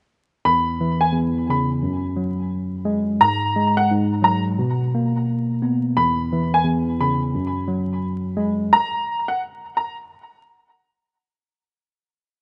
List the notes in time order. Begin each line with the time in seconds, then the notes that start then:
0.45 E2 B5
0.81 E3
1.01 G#5
1.12 E2
1.49 C#3 B5
1.83 F#2
2.16 F#3
2.85 G#3
3.21 G#2 A#5
3.56 G#3
3.77 F#5
3.90 G#2
4.22 F#3 A#5
4.58 B2
4.94 A#3
5.62 B3
5.97 E2 B5
6.32 E3
6.54 G#5
6.64 E2
7.01 C#3 B5
7.34 F#2
7.68 F#3
8.37 G#3
8.73 A#5
9.28 F#5
9.77 A#5